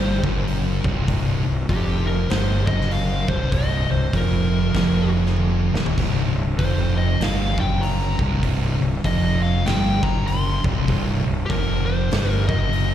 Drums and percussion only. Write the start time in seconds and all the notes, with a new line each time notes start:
0.24 kick
0.47 open hi-hat
0.84 kick
1.08 kick, open hi-hat
1.69 kick, open hi-hat
2.30 snare, open hi-hat
2.67 kick
2.81 snare
2.91 open hi-hat
3.28 kick
3.52 kick, open hi-hat
4.13 kick, open hi-hat
4.74 kick, snare, open hi-hat
5.26 snare
5.36 high tom
5.75 snare
5.86 floor tom
5.98 kick, open hi-hat, splash
6.59 kick, open hi-hat
7.21 snare, open hi-hat
7.58 kick
7.83 open hi-hat
8.19 kick
8.43 kick, open hi-hat
9.04 kick, open hi-hat
9.66 snare, open hi-hat
10.03 kick
10.27 open hi-hat
10.64 kick
10.88 kick, open hi-hat
11.50 kick, open hi-hat
12.11 snare, open hi-hat
12.49 kick
12.73 open hi-hat